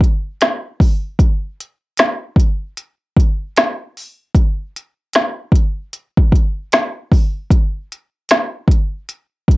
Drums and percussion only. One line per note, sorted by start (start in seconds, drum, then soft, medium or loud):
0.01 kick medium
0.01 closed hi-hat medium
0.41 finger snap loud
0.41 snare loud
0.41 closed hi-hat medium
0.80 kick medium
0.80 open hi-hat soft
1.19 kick medium
1.19 closed hi-hat medium
1.60 closed hi-hat medium
1.97 finger snap medium
1.97 snare loud
1.97 closed hi-hat medium
2.36 kick medium
2.36 closed hi-hat medium
2.77 closed hi-hat medium
3.16 kick medium
3.16 closed hi-hat medium
3.56 finger snap medium
3.56 snare loud
3.56 closed hi-hat medium
3.97 open hi-hat soft
4.35 kick loud
4.35 closed hi-hat medium
4.76 closed hi-hat medium
5.13 finger snap medium
5.13 snare loud
5.13 closed hi-hat medium
5.52 kick medium
5.52 closed hi-hat medium
5.93 closed hi-hat medium
6.17 kick loud
6.32 kick loud
6.32 closed hi-hat medium
6.72 finger snap medium
6.72 snare loud
6.72 closed hi-hat medium
7.12 kick medium
7.12 open hi-hat soft
7.51 kick loud
7.51 closed hi-hat medium
7.92 closed hi-hat medium
8.29 finger snap medium
8.29 snare loud
8.29 closed hi-hat medium
8.68 kick medium
8.68 closed hi-hat medium
9.09 closed hi-hat medium
9.48 kick loud
9.48 closed hi-hat medium